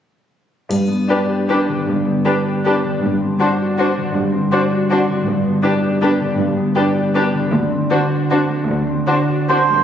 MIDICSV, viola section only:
0, 0, Header, 1, 2, 480
1, 0, Start_track
1, 0, Key_signature, 1, "major"
1, 0, Tempo, 364742
1, 926, Time_signature, 3, 2, 24, 8
1, 926, Tempo, 385356
1, 4766, Tempo, 373134
1, 9566, Tempo, 389105
1, 11486, Tempo, 416956
1, 12363, End_track
2, 0, Start_track
2, 0, Title_t, "Viola section"
2, 0, Program_c, 0, 48
2, 1412, Note_on_c, 0, 62, 23
2, 1512, Note_off_c, 0, 62, 0
2, 1913, Note_on_c, 0, 62, 27
2, 2013, Note_off_c, 0, 62, 0
2, 2862, Note_on_c, 0, 62, 28
2, 2962, Note_off_c, 0, 62, 0
2, 3360, Note_on_c, 0, 62, 29
2, 3460, Note_off_c, 0, 62, 0
2, 4287, Note_on_c, 0, 62, 29
2, 4386, Note_off_c, 0, 62, 0
2, 4765, Note_on_c, 0, 62, 28
2, 4868, Note_off_c, 0, 62, 0
2, 5714, Note_on_c, 0, 62, 32
2, 5817, Note_off_c, 0, 62, 0
2, 6213, Note_on_c, 0, 62, 31
2, 6316, Note_off_c, 0, 62, 0
2, 7139, Note_on_c, 0, 62, 35
2, 7242, Note_off_c, 0, 62, 0
2, 7638, Note_on_c, 0, 62, 36
2, 7741, Note_off_c, 0, 62, 0
2, 8591, Note_on_c, 0, 62, 35
2, 8694, Note_off_c, 0, 62, 0
2, 9095, Note_on_c, 0, 62, 36
2, 9198, Note_off_c, 0, 62, 0
2, 10048, Note_on_c, 0, 62, 32
2, 10146, Note_off_c, 0, 62, 0
2, 10539, Note_on_c, 0, 62, 36
2, 10638, Note_off_c, 0, 62, 0
2, 11488, Note_on_c, 0, 62, 31
2, 11580, Note_off_c, 0, 62, 0
2, 11970, Note_on_c, 0, 62, 29
2, 12062, Note_off_c, 0, 62, 0
2, 12363, End_track
0, 0, End_of_file